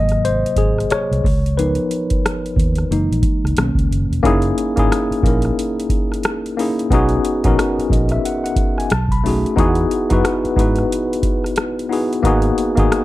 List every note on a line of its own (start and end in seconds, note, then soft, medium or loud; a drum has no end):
0.00 0.44 G#1 loud
0.00 1.21 C3 medium
0.00 1.21 F#3 soft
0.00 1.21 A#3 soft
0.00 0.25 D#5 medium
0.09 cross-stick soft
0.09 closed hi-hat soft
0.25 0.59 C5 medium
0.25 closed hi-hat medium
0.46 closed hi-hat soft
0.56 0.83 G#1 medium
0.56 0.92 G#4 medium
0.56 kick medium
0.56 closed hi-hat medium
0.78 cross-stick soft
0.78 closed hi-hat soft
0.90 1.54 C#5 medium
0.90 muted fingered electric bass stroke soft
0.90 cross-stick medium
0.90 closed hi-hat medium
1.11 1.22 C2 medium
1.11 closed hi-hat soft
1.24 1.77 C#2 loud
1.24 kick medium
1.24 open hi-hat soft
1.46 closed hi-hat soft
1.57 2.54 F3 medium
1.57 2.54 B3 soft
1.57 2.54 D#4 medium
1.57 2.54 A#4 soft
1.57 2.87 B4 medium
1.57 closed hi-hat medium
1.75 closed hi-hat soft
1.91 closed hi-hat medium
2.10 kick medium
2.10 closed hi-hat soft
2.26 cross-stick medium
2.26 closed hi-hat medium
2.46 closed hi-hat soft
2.56 2.83 D#2 medium
2.56 kick loud
2.56 closed hi-hat medium
2.75 cross-stick soft
2.75 closed hi-hat soft
2.91 3.06 F#1 medium
2.91 3.54 E3 medium
2.91 3.55 G#3 soft
2.91 3.55 A#3 soft
2.91 3.55 D#4 medium
2.91 closed hi-hat medium
3.11 3.21 A#1 medium
3.11 closed hi-hat soft
3.23 kick medium
3.23 closed hi-hat medium
3.44 3.55 C#2 medium
3.44 cross-stick soft
3.44 closed hi-hat soft
3.57 3.73 B1 loud
3.57 4.21 D#3 soft
3.57 4.21 A#3 soft
3.57 4.22 C#4 medium
3.57 cross-stick medium
3.57 closed hi-hat medium
3.75 3.87 C#2 medium
3.75 kick medium
3.75 closed hi-hat soft
3.91 4.06 F#1 medium
3.91 closed hi-hat medium
4.10 4.21 E1 medium
4.10 closed hi-hat soft
4.23 4.51 F#1 medium
4.23 4.66 A#3 loud
4.23 4.67 C#4 loud
4.23 4.67 D#4 loud
4.23 4.68 E4 loud
4.23 4.68 G#4 loud
4.23 kick medium
4.23 closed hi-hat medium
4.42 closed hi-hat soft
4.58 closed hi-hat medium
4.76 4.88 G#1 medium
4.76 5.17 A#3 medium
4.76 5.17 C#4 medium
4.76 5.17 D#4 medium
4.76 5.18 E4 medium
4.76 5.18 G#4 loud
4.76 kick medium
4.76 closed hi-hat soft
4.92 cross-stick medium
4.92 closed hi-hat medium
5.11 muted fingered electric bass stroke soft
5.11 closed hi-hat soft
5.23 5.50 A#1 medium
5.23 6.36 A#3 medium
5.23 6.37 C#4 medium
5.23 6.37 D#4 medium
5.23 6.38 E4 medium
5.23 kick loud
5.23 closed hi-hat medium
5.28 6.38 A#4 medium
5.42 cross-stick soft
5.42 closed hi-hat soft
5.59 closed hi-hat medium
5.80 closed hi-hat soft
5.90 kick medium
5.90 closed hi-hat medium
6.12 cross-stick soft
6.12 closed hi-hat soft
6.23 cross-stick loud
6.23 closed hi-hat medium
6.46 closed hi-hat soft
6.57 6.86 A#3 medium
6.57 6.86 C#4 medium
6.57 6.87 D#4 medium
6.57 6.87 E4 medium
6.57 6.88 G#4 medium
6.57 open hi-hat soft
6.79 closed hi-hat soft
6.90 7.17 B1 medium
6.90 7.34 B3 loud
6.90 7.34 C#4 loud
6.90 7.35 D#4 loud
6.90 7.35 F#4 loud
6.90 7.35 G#4 loud
6.90 kick loud
6.90 closed hi-hat medium
7.09 closed hi-hat soft
7.25 closed hi-hat medium
7.44 7.55 A#1 medium
7.44 8.52 B3 medium
7.44 8.53 C#4 medium
7.44 8.53 D#4 medium
7.44 8.54 F#4 medium
7.44 8.54 A#4 loud
7.44 kick medium
7.44 closed hi-hat medium
7.59 cross-stick medium
7.59 closed hi-hat medium
7.79 muted fingered electric bass stroke soft
7.79 closed hi-hat soft
7.90 8.17 A#1 medium
7.90 8.10 D#5 medium
7.90 kick medium
7.90 closed hi-hat medium
8.09 8.24 E5 medium
8.09 cross-stick soft
8.09 closed hi-hat soft
8.25 8.43 F#5 medium
8.25 closed hi-hat medium
8.44 8.75 F#5 medium
8.44 closed hi-hat medium
8.56 kick medium
8.56 closed hi-hat medium
8.78 8.90 G#5 medium
8.78 cross-stick soft
8.78 closed hi-hat soft
8.90 9.44 B1 loud
8.90 9.10 A5 medium
8.90 cross-stick medium
8.90 closed hi-hat medium
9.08 9.55 B5 medium
9.08 kick medium
9.08 closed hi-hat soft
9.24 9.53 A3 medium
9.24 9.53 C#4 medium
9.24 9.53 D#4 medium
9.24 9.54 F#4 medium
9.24 9.55 G#4 medium
9.24 open hi-hat soft
9.46 closed hi-hat soft
9.56 9.84 E2 loud
9.56 10.00 B3 loud
9.56 10.00 D#4 loud
9.56 10.00 E4 loud
9.56 10.01 F#4 medium
9.56 10.01 G#4 loud
9.56 kick medium
9.56 closed hi-hat medium
9.75 closed hi-hat soft
9.91 closed hi-hat medium
10.10 10.22 F#2 medium
10.10 10.50 B3 medium
10.10 10.50 D#4 medium
10.10 10.51 E4 medium
10.10 10.51 F#4 medium
10.10 10.52 B4 loud
10.10 kick medium
10.10 closed hi-hat soft
10.25 cross-stick medium
10.25 closed hi-hat medium
10.45 muted fingered electric bass stroke soft
10.45 closed hi-hat soft
10.56 10.84 G#2 medium
10.56 11.69 B3 medium
10.56 11.69 D#4 medium
10.56 11.70 E4 medium
10.56 11.70 F#4 medium
10.56 11.71 B4 medium
10.56 kick loud
10.56 closed hi-hat medium
10.76 cross-stick soft
10.76 closed hi-hat soft
10.92 closed hi-hat medium
11.13 closed hi-hat soft
11.23 kick medium
11.23 closed hi-hat medium
11.44 cross-stick soft
11.44 closed hi-hat soft
11.56 cross-stick medium
11.56 closed hi-hat medium
11.79 closed hi-hat soft
11.89 12.19 B3 medium
11.89 12.19 D#4 medium
11.89 12.20 E4 medium
11.89 12.20 F#4 medium
11.89 12.21 G#4 medium
11.89 open hi-hat soft
12.13 closed hi-hat soft
12.23 12.50 G#1 medium
12.23 12.66 A#3 loud
12.23 12.67 B3 loud
12.23 12.67 D#4 loud
12.23 12.68 F#4 loud
12.23 12.68 G#4 loud
12.23 kick loud
12.23 closed hi-hat medium
12.42 closed hi-hat soft
12.58 closed hi-hat medium
12.76 12.88 G#1 medium
12.76 13.04 A#3 medium
12.76 13.04 B3 medium
12.76 13.04 D#4 medium
12.76 13.04 F#4 medium
12.76 13.04 G#4 loud
12.76 kick medium
12.76 closed hi-hat medium
12.92 cross-stick medium
12.92 closed hi-hat medium